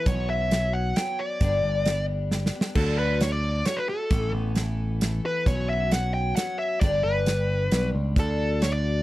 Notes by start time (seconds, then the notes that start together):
0.06 B1 B2 F#3 B3 C#4 F#4 C#5, kick, closed hi-hat
0.30 E5
0.51 F#3 B3 C#4 F#4, snare, closed hi-hat
0.73 F#5
0.95 F#3 B3 C#4 F#4 G5, snare, closed hi-hat
1.20 D5
1.41 G1 G2 D3 G3 B3 D4 G4, kick, closed hi-hat
1.64 G1
1.86 G3 B3 D4 G4, snare, closed hi-hat
2.31 G3 B3 D4 G4, snare
2.46 snare
2.53 G3 B3 D4 G4
2.61 snare
2.75 D2 D3 F#3 A3 D4 F#4 A4, kick, crash
2.99 B4
3.21 F#3 A3 D4 F#4 C#5, snare, closed hi-hat
3.32 D5
3.66 F#3 A3 D4 F#4 C#5, snare, closed hi-hat
3.77 B4
3.88 A3 D4 F#4 A4
4.11 A1 A2 E3 A3 B3 A4, kick, closed hi-hat
4.33 A1
4.55 E3 A3 B3 A4, snare, closed hi-hat
5.01 E3 A3 B3 A4, snare, closed hi-hat
5.26 B4
5.46 B1 B2 F#3 B3 C#4 F#4 C#5, kick, closed hi-hat
5.69 E5
5.92 F#3 B3 C#4 F#4 F#5, snare, closed hi-hat
6.14 G5
6.36 F#3 B3 C#4 F#4 F#5, snare, closed hi-hat
6.59 E5
6.80 G1 G2 D3 G3 B3 D4 D5, kick, closed hi-hat
6.85 G4
7.03 G1 B4
7.26 G3 D4 G4, snare, closed hi-hat
7.71 B1 G3 B3 D4 G4, snare, closed hi-hat
7.95 C#2
8.16 D2 D3 A3 D4 F#4 A4, kick, closed hi-hat
8.60 D3 A3 D4 F#4 C#5, snare, closed hi-hat
8.73 D5